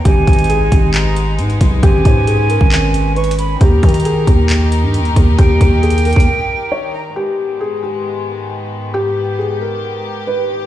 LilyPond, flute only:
\new Staff \with { instrumentName = "Flute" } { \time 4/4 \key gis \minor \tempo 4 = 135 gis''2 ais''4 r4 | gis''2. cis'''8 b''8 | ais''2 ais''4 r4 | g''2.~ g''8 ais''8 |
r1 | r1 | }